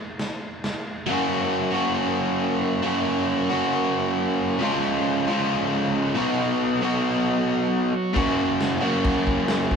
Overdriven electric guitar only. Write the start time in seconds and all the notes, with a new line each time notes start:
1.07 F#3 A#3 C#4 F#4
1.71 F#3 A#3 C#4 F#4
2.82 F#3 A#3 C#4 F#4
3.50 F#3 A#3 C#4 F#4
4.58 C#3 F3 G#3 C#4 F4
5.27 C#3 F3 G#3 C#4 F4
6.14 B2 F#3 B3 D#4 F#4
6.81 B2 F#3 B3 D#4 F#4
8.13 F#2 C#3 F#3 A#3 C#4 F#4
8.80 F#2 C#3 F#3 A#3 C#4 F#4